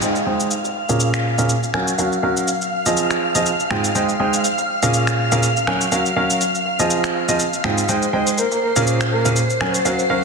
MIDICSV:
0, 0, Header, 1, 5, 480
1, 0, Start_track
1, 0, Key_signature, -4, "major"
1, 0, Tempo, 491803
1, 17, Time_signature, 4, 2, 24, 8
1, 9995, End_track
2, 0, Start_track
2, 0, Title_t, "String machine"
2, 0, Program_c, 0, 50
2, 16, Note_on_c, 0, 89, 80
2, 17, Note_on_c, 0, 77, 80
2, 7696, Note_on_c, 0, 72, 81
2, 7697, Note_on_c, 0, 84, 79
2, 7707, Note_off_c, 0, 77, 0
2, 7707, Note_off_c, 0, 89, 0
2, 9995, Note_off_c, 0, 72, 0
2, 9995, Note_off_c, 0, 84, 0
2, 9995, End_track
3, 0, Start_track
3, 0, Title_t, "Soft synth lead"
3, 0, Program_c, 1, 80
3, 8176, Note_on_c, 1, 70, 84
3, 8262, Note_off_c, 1, 70, 0
3, 8311, Note_on_c, 1, 70, 74
3, 8378, Note_off_c, 1, 70, 0
3, 8417, Note_on_c, 1, 70, 84
3, 8503, Note_off_c, 1, 70, 0
3, 8550, Note_on_c, 1, 70, 75
3, 8618, Note_off_c, 1, 70, 0
3, 8897, Note_on_c, 1, 70, 91
3, 9035, Note_off_c, 1, 70, 0
3, 9995, End_track
4, 0, Start_track
4, 0, Title_t, "Grand piano"
4, 0, Program_c, 2, 0
4, 17, Note_on_c, 2, 56, 76
4, 17, Note_on_c, 2, 63, 69
4, 17, Note_on_c, 2, 68, 68
4, 17, Note_on_c, 2, 72, 69
4, 17, Note_on_c, 2, 79, 84
4, 170, Note_off_c, 2, 56, 0
4, 170, Note_off_c, 2, 63, 0
4, 170, Note_off_c, 2, 68, 0
4, 170, Note_off_c, 2, 72, 0
4, 170, Note_off_c, 2, 79, 0
4, 256, Note_on_c, 2, 79, 82
4, 257, Note_on_c, 2, 56, 74
4, 257, Note_on_c, 2, 63, 68
4, 257, Note_on_c, 2, 68, 68
4, 257, Note_on_c, 2, 72, 68
4, 484, Note_off_c, 2, 56, 0
4, 484, Note_off_c, 2, 63, 0
4, 484, Note_off_c, 2, 68, 0
4, 484, Note_off_c, 2, 72, 0
4, 484, Note_off_c, 2, 79, 0
4, 870, Note_on_c, 2, 61, 69
4, 870, Note_on_c, 2, 68, 70
4, 870, Note_on_c, 2, 70, 69
4, 871, Note_on_c, 2, 46, 74
4, 871, Note_on_c, 2, 77, 83
4, 1318, Note_off_c, 2, 46, 0
4, 1318, Note_off_c, 2, 61, 0
4, 1318, Note_off_c, 2, 68, 0
4, 1318, Note_off_c, 2, 70, 0
4, 1318, Note_off_c, 2, 77, 0
4, 1351, Note_on_c, 2, 46, 80
4, 1351, Note_on_c, 2, 61, 72
4, 1351, Note_on_c, 2, 68, 73
4, 1351, Note_on_c, 2, 70, 74
4, 1351, Note_on_c, 2, 77, 84
4, 1480, Note_off_c, 2, 46, 0
4, 1480, Note_off_c, 2, 61, 0
4, 1480, Note_off_c, 2, 68, 0
4, 1480, Note_off_c, 2, 70, 0
4, 1480, Note_off_c, 2, 77, 0
4, 1697, Note_on_c, 2, 54, 82
4, 1697, Note_on_c, 2, 61, 74
4, 1697, Note_on_c, 2, 66, 73
4, 1697, Note_on_c, 2, 70, 76
4, 1697, Note_on_c, 2, 80, 89
4, 1850, Note_off_c, 2, 54, 0
4, 1850, Note_off_c, 2, 61, 0
4, 1850, Note_off_c, 2, 66, 0
4, 1850, Note_off_c, 2, 70, 0
4, 1850, Note_off_c, 2, 80, 0
4, 1936, Note_on_c, 2, 70, 70
4, 1937, Note_on_c, 2, 54, 76
4, 1937, Note_on_c, 2, 61, 69
4, 1937, Note_on_c, 2, 66, 71
4, 1937, Note_on_c, 2, 77, 83
4, 2089, Note_off_c, 2, 61, 0
4, 2089, Note_off_c, 2, 66, 0
4, 2089, Note_off_c, 2, 70, 0
4, 2089, Note_off_c, 2, 77, 0
4, 2090, Note_off_c, 2, 54, 0
4, 2176, Note_on_c, 2, 61, 69
4, 2176, Note_on_c, 2, 70, 69
4, 2177, Note_on_c, 2, 54, 74
4, 2177, Note_on_c, 2, 66, 70
4, 2177, Note_on_c, 2, 77, 83
4, 2404, Note_off_c, 2, 54, 0
4, 2404, Note_off_c, 2, 61, 0
4, 2404, Note_off_c, 2, 66, 0
4, 2404, Note_off_c, 2, 70, 0
4, 2404, Note_off_c, 2, 77, 0
4, 2791, Note_on_c, 2, 53, 77
4, 2791, Note_on_c, 2, 60, 73
4, 2791, Note_on_c, 2, 65, 71
4, 2791, Note_on_c, 2, 68, 70
4, 2791, Note_on_c, 2, 75, 82
4, 3239, Note_off_c, 2, 53, 0
4, 3239, Note_off_c, 2, 60, 0
4, 3239, Note_off_c, 2, 65, 0
4, 3239, Note_off_c, 2, 68, 0
4, 3239, Note_off_c, 2, 75, 0
4, 3271, Note_on_c, 2, 53, 82
4, 3271, Note_on_c, 2, 60, 74
4, 3271, Note_on_c, 2, 65, 73
4, 3271, Note_on_c, 2, 68, 73
4, 3271, Note_on_c, 2, 75, 88
4, 3400, Note_off_c, 2, 53, 0
4, 3400, Note_off_c, 2, 60, 0
4, 3400, Note_off_c, 2, 65, 0
4, 3400, Note_off_c, 2, 68, 0
4, 3400, Note_off_c, 2, 75, 0
4, 3615, Note_on_c, 2, 60, 73
4, 3615, Note_on_c, 2, 79, 94
4, 3616, Note_on_c, 2, 44, 82
4, 3616, Note_on_c, 2, 65, 75
4, 3616, Note_on_c, 2, 68, 74
4, 3769, Note_off_c, 2, 44, 0
4, 3769, Note_off_c, 2, 60, 0
4, 3769, Note_off_c, 2, 65, 0
4, 3769, Note_off_c, 2, 68, 0
4, 3769, Note_off_c, 2, 79, 0
4, 3855, Note_on_c, 2, 56, 78
4, 3855, Note_on_c, 2, 63, 70
4, 3855, Note_on_c, 2, 68, 70
4, 3855, Note_on_c, 2, 72, 71
4, 3855, Note_on_c, 2, 79, 86
4, 4009, Note_off_c, 2, 56, 0
4, 4009, Note_off_c, 2, 63, 0
4, 4009, Note_off_c, 2, 68, 0
4, 4009, Note_off_c, 2, 72, 0
4, 4009, Note_off_c, 2, 79, 0
4, 4096, Note_on_c, 2, 56, 76
4, 4096, Note_on_c, 2, 63, 70
4, 4096, Note_on_c, 2, 68, 71
4, 4096, Note_on_c, 2, 72, 69
4, 4096, Note_on_c, 2, 79, 85
4, 4323, Note_off_c, 2, 63, 0
4, 4323, Note_off_c, 2, 72, 0
4, 4324, Note_off_c, 2, 56, 0
4, 4324, Note_off_c, 2, 68, 0
4, 4324, Note_off_c, 2, 79, 0
4, 4710, Note_on_c, 2, 61, 69
4, 4711, Note_on_c, 2, 46, 75
4, 4711, Note_on_c, 2, 68, 71
4, 4711, Note_on_c, 2, 70, 70
4, 4711, Note_on_c, 2, 77, 85
4, 5158, Note_off_c, 2, 46, 0
4, 5158, Note_off_c, 2, 61, 0
4, 5158, Note_off_c, 2, 70, 0
4, 5158, Note_off_c, 2, 77, 0
4, 5159, Note_off_c, 2, 68, 0
4, 5191, Note_on_c, 2, 46, 78
4, 5191, Note_on_c, 2, 61, 75
4, 5191, Note_on_c, 2, 70, 74
4, 5191, Note_on_c, 2, 77, 88
4, 5192, Note_on_c, 2, 68, 74
4, 5320, Note_off_c, 2, 46, 0
4, 5320, Note_off_c, 2, 61, 0
4, 5320, Note_off_c, 2, 68, 0
4, 5320, Note_off_c, 2, 70, 0
4, 5320, Note_off_c, 2, 77, 0
4, 5536, Note_on_c, 2, 54, 82
4, 5537, Note_on_c, 2, 61, 75
4, 5537, Note_on_c, 2, 66, 77
4, 5537, Note_on_c, 2, 70, 76
4, 5537, Note_on_c, 2, 80, 91
4, 5689, Note_off_c, 2, 54, 0
4, 5689, Note_off_c, 2, 61, 0
4, 5689, Note_off_c, 2, 66, 0
4, 5689, Note_off_c, 2, 70, 0
4, 5689, Note_off_c, 2, 80, 0
4, 5776, Note_on_c, 2, 54, 76
4, 5776, Note_on_c, 2, 61, 73
4, 5776, Note_on_c, 2, 66, 68
4, 5777, Note_on_c, 2, 70, 71
4, 5777, Note_on_c, 2, 77, 86
4, 5929, Note_off_c, 2, 54, 0
4, 5929, Note_off_c, 2, 61, 0
4, 5929, Note_off_c, 2, 66, 0
4, 5929, Note_off_c, 2, 70, 0
4, 5929, Note_off_c, 2, 77, 0
4, 6016, Note_on_c, 2, 54, 77
4, 6016, Note_on_c, 2, 61, 70
4, 6016, Note_on_c, 2, 66, 70
4, 6016, Note_on_c, 2, 70, 72
4, 6017, Note_on_c, 2, 77, 84
4, 6244, Note_off_c, 2, 54, 0
4, 6244, Note_off_c, 2, 61, 0
4, 6244, Note_off_c, 2, 66, 0
4, 6244, Note_off_c, 2, 70, 0
4, 6244, Note_off_c, 2, 77, 0
4, 6631, Note_on_c, 2, 53, 77
4, 6631, Note_on_c, 2, 60, 70
4, 6631, Note_on_c, 2, 65, 72
4, 6631, Note_on_c, 2, 68, 70
4, 6631, Note_on_c, 2, 75, 88
4, 7078, Note_off_c, 2, 53, 0
4, 7078, Note_off_c, 2, 60, 0
4, 7078, Note_off_c, 2, 68, 0
4, 7079, Note_off_c, 2, 65, 0
4, 7079, Note_off_c, 2, 75, 0
4, 7110, Note_on_c, 2, 53, 81
4, 7110, Note_on_c, 2, 60, 73
4, 7110, Note_on_c, 2, 65, 73
4, 7110, Note_on_c, 2, 68, 72
4, 7110, Note_on_c, 2, 75, 88
4, 7240, Note_off_c, 2, 53, 0
4, 7240, Note_off_c, 2, 60, 0
4, 7240, Note_off_c, 2, 65, 0
4, 7240, Note_off_c, 2, 68, 0
4, 7240, Note_off_c, 2, 75, 0
4, 7457, Note_on_c, 2, 44, 83
4, 7457, Note_on_c, 2, 60, 76
4, 7457, Note_on_c, 2, 65, 74
4, 7457, Note_on_c, 2, 68, 75
4, 7457, Note_on_c, 2, 79, 90
4, 7609, Note_off_c, 2, 60, 0
4, 7609, Note_off_c, 2, 65, 0
4, 7609, Note_off_c, 2, 68, 0
4, 7609, Note_off_c, 2, 79, 0
4, 7610, Note_off_c, 2, 44, 0
4, 7696, Note_on_c, 2, 72, 69
4, 7697, Note_on_c, 2, 56, 76
4, 7697, Note_on_c, 2, 63, 71
4, 7697, Note_on_c, 2, 68, 69
4, 7697, Note_on_c, 2, 79, 84
4, 7849, Note_off_c, 2, 56, 0
4, 7849, Note_off_c, 2, 63, 0
4, 7849, Note_off_c, 2, 68, 0
4, 7849, Note_off_c, 2, 72, 0
4, 7849, Note_off_c, 2, 79, 0
4, 7936, Note_on_c, 2, 56, 76
4, 7936, Note_on_c, 2, 68, 69
4, 7937, Note_on_c, 2, 63, 71
4, 7937, Note_on_c, 2, 72, 69
4, 7937, Note_on_c, 2, 79, 83
4, 8164, Note_off_c, 2, 56, 0
4, 8164, Note_off_c, 2, 63, 0
4, 8164, Note_off_c, 2, 68, 0
4, 8164, Note_off_c, 2, 72, 0
4, 8164, Note_off_c, 2, 79, 0
4, 8551, Note_on_c, 2, 46, 79
4, 8551, Note_on_c, 2, 61, 72
4, 8551, Note_on_c, 2, 68, 72
4, 8551, Note_on_c, 2, 70, 70
4, 8551, Note_on_c, 2, 77, 88
4, 8999, Note_off_c, 2, 46, 0
4, 8999, Note_off_c, 2, 61, 0
4, 8999, Note_off_c, 2, 68, 0
4, 8999, Note_off_c, 2, 70, 0
4, 8999, Note_off_c, 2, 77, 0
4, 9030, Note_on_c, 2, 68, 74
4, 9030, Note_on_c, 2, 70, 73
4, 9031, Note_on_c, 2, 46, 82
4, 9031, Note_on_c, 2, 61, 76
4, 9031, Note_on_c, 2, 77, 87
4, 9160, Note_off_c, 2, 46, 0
4, 9160, Note_off_c, 2, 61, 0
4, 9160, Note_off_c, 2, 68, 0
4, 9160, Note_off_c, 2, 70, 0
4, 9160, Note_off_c, 2, 77, 0
4, 9376, Note_on_c, 2, 54, 83
4, 9376, Note_on_c, 2, 80, 93
4, 9377, Note_on_c, 2, 61, 77
4, 9377, Note_on_c, 2, 66, 76
4, 9377, Note_on_c, 2, 70, 76
4, 9529, Note_off_c, 2, 54, 0
4, 9529, Note_off_c, 2, 61, 0
4, 9529, Note_off_c, 2, 66, 0
4, 9529, Note_off_c, 2, 70, 0
4, 9529, Note_off_c, 2, 80, 0
4, 9616, Note_on_c, 2, 54, 76
4, 9616, Note_on_c, 2, 61, 71
4, 9616, Note_on_c, 2, 66, 72
4, 9616, Note_on_c, 2, 70, 70
4, 9616, Note_on_c, 2, 77, 85
4, 9769, Note_off_c, 2, 54, 0
4, 9769, Note_off_c, 2, 61, 0
4, 9769, Note_off_c, 2, 66, 0
4, 9769, Note_off_c, 2, 70, 0
4, 9769, Note_off_c, 2, 77, 0
4, 9857, Note_on_c, 2, 54, 77
4, 9857, Note_on_c, 2, 61, 72
4, 9857, Note_on_c, 2, 66, 69
4, 9857, Note_on_c, 2, 70, 69
4, 9857, Note_on_c, 2, 77, 85
4, 9995, Note_off_c, 2, 54, 0
4, 9995, Note_off_c, 2, 61, 0
4, 9995, Note_off_c, 2, 66, 0
4, 9995, Note_off_c, 2, 70, 0
4, 9995, Note_off_c, 2, 77, 0
4, 9995, End_track
5, 0, Start_track
5, 0, Title_t, "Drums"
5, 16, Note_on_c, 9, 69, 46
5, 114, Note_off_c, 9, 69, 0
5, 151, Note_on_c, 9, 69, 29
5, 248, Note_off_c, 9, 69, 0
5, 257, Note_on_c, 9, 42, 60
5, 354, Note_off_c, 9, 42, 0
5, 391, Note_on_c, 9, 69, 57
5, 488, Note_off_c, 9, 69, 0
5, 496, Note_on_c, 9, 42, 75
5, 496, Note_on_c, 9, 69, 49
5, 593, Note_off_c, 9, 69, 0
5, 594, Note_off_c, 9, 42, 0
5, 630, Note_on_c, 9, 69, 29
5, 631, Note_on_c, 9, 38, 42
5, 728, Note_off_c, 9, 69, 0
5, 729, Note_off_c, 9, 38, 0
5, 737, Note_on_c, 9, 42, 60
5, 834, Note_off_c, 9, 42, 0
5, 870, Note_on_c, 9, 69, 59
5, 871, Note_on_c, 9, 38, 35
5, 968, Note_off_c, 9, 38, 0
5, 968, Note_off_c, 9, 69, 0
5, 976, Note_on_c, 9, 69, 50
5, 977, Note_on_c, 9, 42, 76
5, 1074, Note_off_c, 9, 42, 0
5, 1074, Note_off_c, 9, 69, 0
5, 1111, Note_on_c, 9, 26, 56
5, 1111, Note_on_c, 9, 69, 30
5, 1208, Note_off_c, 9, 26, 0
5, 1208, Note_off_c, 9, 69, 0
5, 1216, Note_on_c, 9, 42, 59
5, 1314, Note_off_c, 9, 42, 0
5, 1351, Note_on_c, 9, 38, 38
5, 1351, Note_on_c, 9, 69, 59
5, 1448, Note_off_c, 9, 38, 0
5, 1448, Note_off_c, 9, 69, 0
5, 1456, Note_on_c, 9, 42, 76
5, 1457, Note_on_c, 9, 69, 49
5, 1554, Note_off_c, 9, 42, 0
5, 1554, Note_off_c, 9, 69, 0
5, 1591, Note_on_c, 9, 69, 29
5, 1689, Note_off_c, 9, 69, 0
5, 1697, Note_on_c, 9, 26, 68
5, 1795, Note_off_c, 9, 26, 0
5, 1832, Note_on_c, 9, 69, 58
5, 1929, Note_off_c, 9, 69, 0
5, 1936, Note_on_c, 9, 46, 72
5, 1937, Note_on_c, 9, 69, 47
5, 2033, Note_off_c, 9, 46, 0
5, 2035, Note_off_c, 9, 69, 0
5, 2072, Note_on_c, 9, 69, 28
5, 2169, Note_off_c, 9, 69, 0
5, 2176, Note_on_c, 9, 42, 61
5, 2273, Note_off_c, 9, 42, 0
5, 2311, Note_on_c, 9, 69, 55
5, 2409, Note_off_c, 9, 69, 0
5, 2416, Note_on_c, 9, 42, 75
5, 2417, Note_on_c, 9, 69, 48
5, 2514, Note_off_c, 9, 42, 0
5, 2515, Note_off_c, 9, 69, 0
5, 2551, Note_on_c, 9, 69, 29
5, 2649, Note_off_c, 9, 69, 0
5, 2656, Note_on_c, 9, 42, 59
5, 2754, Note_off_c, 9, 42, 0
5, 2790, Note_on_c, 9, 42, 38
5, 2791, Note_on_c, 9, 69, 56
5, 2888, Note_off_c, 9, 42, 0
5, 2889, Note_off_c, 9, 69, 0
5, 2896, Note_on_c, 9, 42, 79
5, 2897, Note_on_c, 9, 69, 49
5, 2994, Note_off_c, 9, 42, 0
5, 2995, Note_off_c, 9, 69, 0
5, 3031, Note_on_c, 9, 38, 51
5, 3032, Note_on_c, 9, 26, 56
5, 3032, Note_on_c, 9, 69, 29
5, 3128, Note_off_c, 9, 38, 0
5, 3129, Note_off_c, 9, 26, 0
5, 3129, Note_off_c, 9, 69, 0
5, 3136, Note_on_c, 9, 42, 69
5, 3234, Note_off_c, 9, 42, 0
5, 3271, Note_on_c, 9, 69, 57
5, 3369, Note_off_c, 9, 69, 0
5, 3377, Note_on_c, 9, 69, 47
5, 3475, Note_off_c, 9, 69, 0
5, 3510, Note_on_c, 9, 42, 71
5, 3512, Note_on_c, 9, 69, 28
5, 3608, Note_off_c, 9, 42, 0
5, 3609, Note_off_c, 9, 69, 0
5, 3617, Note_on_c, 9, 26, 70
5, 3714, Note_off_c, 9, 26, 0
5, 3751, Note_on_c, 9, 69, 59
5, 3849, Note_off_c, 9, 69, 0
5, 3856, Note_on_c, 9, 42, 80
5, 3857, Note_on_c, 9, 69, 46
5, 3953, Note_off_c, 9, 42, 0
5, 3955, Note_off_c, 9, 69, 0
5, 3991, Note_on_c, 9, 69, 29
5, 4089, Note_off_c, 9, 69, 0
5, 4231, Note_on_c, 9, 69, 58
5, 4329, Note_off_c, 9, 69, 0
5, 4336, Note_on_c, 9, 42, 77
5, 4337, Note_on_c, 9, 69, 47
5, 4434, Note_off_c, 9, 42, 0
5, 4435, Note_off_c, 9, 69, 0
5, 4471, Note_on_c, 9, 38, 43
5, 4472, Note_on_c, 9, 69, 28
5, 4568, Note_off_c, 9, 38, 0
5, 4570, Note_off_c, 9, 69, 0
5, 4577, Note_on_c, 9, 42, 61
5, 4674, Note_off_c, 9, 42, 0
5, 4711, Note_on_c, 9, 38, 36
5, 4712, Note_on_c, 9, 69, 57
5, 4809, Note_off_c, 9, 38, 0
5, 4809, Note_off_c, 9, 69, 0
5, 4816, Note_on_c, 9, 42, 78
5, 4817, Note_on_c, 9, 69, 47
5, 4914, Note_off_c, 9, 42, 0
5, 4915, Note_off_c, 9, 69, 0
5, 4951, Note_on_c, 9, 26, 60
5, 4952, Note_on_c, 9, 69, 28
5, 5049, Note_off_c, 9, 26, 0
5, 5049, Note_off_c, 9, 69, 0
5, 5056, Note_on_c, 9, 42, 60
5, 5153, Note_off_c, 9, 42, 0
5, 5191, Note_on_c, 9, 38, 38
5, 5191, Note_on_c, 9, 69, 58
5, 5288, Note_off_c, 9, 38, 0
5, 5289, Note_off_c, 9, 69, 0
5, 5296, Note_on_c, 9, 42, 79
5, 5298, Note_on_c, 9, 69, 49
5, 5394, Note_off_c, 9, 42, 0
5, 5395, Note_off_c, 9, 69, 0
5, 5432, Note_on_c, 9, 69, 27
5, 5529, Note_off_c, 9, 69, 0
5, 5537, Note_on_c, 9, 26, 72
5, 5635, Note_off_c, 9, 26, 0
5, 5671, Note_on_c, 9, 69, 57
5, 5769, Note_off_c, 9, 69, 0
5, 5776, Note_on_c, 9, 46, 73
5, 5777, Note_on_c, 9, 69, 47
5, 5874, Note_off_c, 9, 46, 0
5, 5875, Note_off_c, 9, 69, 0
5, 5911, Note_on_c, 9, 69, 29
5, 6009, Note_off_c, 9, 69, 0
5, 6016, Note_on_c, 9, 42, 62
5, 6113, Note_off_c, 9, 42, 0
5, 6151, Note_on_c, 9, 69, 56
5, 6248, Note_off_c, 9, 69, 0
5, 6255, Note_on_c, 9, 42, 77
5, 6257, Note_on_c, 9, 69, 48
5, 6353, Note_off_c, 9, 42, 0
5, 6354, Note_off_c, 9, 69, 0
5, 6392, Note_on_c, 9, 69, 29
5, 6489, Note_off_c, 9, 69, 0
5, 6496, Note_on_c, 9, 42, 60
5, 6593, Note_off_c, 9, 42, 0
5, 6632, Note_on_c, 9, 69, 58
5, 6729, Note_off_c, 9, 69, 0
5, 6735, Note_on_c, 9, 42, 79
5, 6737, Note_on_c, 9, 69, 48
5, 6833, Note_off_c, 9, 42, 0
5, 6835, Note_off_c, 9, 69, 0
5, 6870, Note_on_c, 9, 38, 52
5, 6871, Note_on_c, 9, 26, 62
5, 6871, Note_on_c, 9, 69, 28
5, 6967, Note_off_c, 9, 38, 0
5, 6968, Note_off_c, 9, 26, 0
5, 6969, Note_off_c, 9, 69, 0
5, 6976, Note_on_c, 9, 38, 41
5, 6976, Note_on_c, 9, 42, 59
5, 7073, Note_off_c, 9, 38, 0
5, 7073, Note_off_c, 9, 42, 0
5, 7110, Note_on_c, 9, 38, 44
5, 7111, Note_on_c, 9, 69, 59
5, 7208, Note_off_c, 9, 38, 0
5, 7209, Note_off_c, 9, 69, 0
5, 7216, Note_on_c, 9, 42, 78
5, 7217, Note_on_c, 9, 69, 49
5, 7314, Note_off_c, 9, 42, 0
5, 7314, Note_off_c, 9, 69, 0
5, 7351, Note_on_c, 9, 69, 28
5, 7449, Note_off_c, 9, 69, 0
5, 7457, Note_on_c, 9, 26, 75
5, 7554, Note_off_c, 9, 26, 0
5, 7591, Note_on_c, 9, 69, 58
5, 7689, Note_off_c, 9, 69, 0
5, 7696, Note_on_c, 9, 42, 80
5, 7697, Note_on_c, 9, 69, 51
5, 7794, Note_off_c, 9, 42, 0
5, 7794, Note_off_c, 9, 69, 0
5, 7831, Note_on_c, 9, 69, 31
5, 7929, Note_off_c, 9, 69, 0
5, 7937, Note_on_c, 9, 42, 63
5, 8034, Note_off_c, 9, 42, 0
5, 8072, Note_on_c, 9, 69, 59
5, 8169, Note_off_c, 9, 69, 0
5, 8176, Note_on_c, 9, 42, 76
5, 8177, Note_on_c, 9, 69, 50
5, 8274, Note_off_c, 9, 42, 0
5, 8275, Note_off_c, 9, 69, 0
5, 8311, Note_on_c, 9, 38, 44
5, 8312, Note_on_c, 9, 69, 29
5, 8409, Note_off_c, 9, 38, 0
5, 8409, Note_off_c, 9, 69, 0
5, 8416, Note_on_c, 9, 42, 61
5, 8514, Note_off_c, 9, 42, 0
5, 8551, Note_on_c, 9, 38, 37
5, 8551, Note_on_c, 9, 69, 60
5, 8649, Note_off_c, 9, 38, 0
5, 8649, Note_off_c, 9, 69, 0
5, 8656, Note_on_c, 9, 42, 81
5, 8657, Note_on_c, 9, 69, 51
5, 8754, Note_off_c, 9, 42, 0
5, 8755, Note_off_c, 9, 69, 0
5, 8791, Note_on_c, 9, 26, 63
5, 8791, Note_on_c, 9, 69, 29
5, 8889, Note_off_c, 9, 26, 0
5, 8889, Note_off_c, 9, 69, 0
5, 8896, Note_on_c, 9, 42, 61
5, 8994, Note_off_c, 9, 42, 0
5, 9031, Note_on_c, 9, 38, 39
5, 9031, Note_on_c, 9, 69, 61
5, 9129, Note_off_c, 9, 38, 0
5, 9129, Note_off_c, 9, 69, 0
5, 9137, Note_on_c, 9, 42, 80
5, 9137, Note_on_c, 9, 69, 50
5, 9234, Note_off_c, 9, 69, 0
5, 9235, Note_off_c, 9, 42, 0
5, 9271, Note_on_c, 9, 69, 29
5, 9369, Note_off_c, 9, 69, 0
5, 9376, Note_on_c, 9, 26, 75
5, 9474, Note_off_c, 9, 26, 0
5, 9511, Note_on_c, 9, 69, 61
5, 9609, Note_off_c, 9, 69, 0
5, 9616, Note_on_c, 9, 46, 72
5, 9617, Note_on_c, 9, 69, 50
5, 9714, Note_off_c, 9, 46, 0
5, 9715, Note_off_c, 9, 69, 0
5, 9751, Note_on_c, 9, 69, 31
5, 9849, Note_off_c, 9, 69, 0
5, 9857, Note_on_c, 9, 42, 63
5, 9954, Note_off_c, 9, 42, 0
5, 9995, End_track
0, 0, End_of_file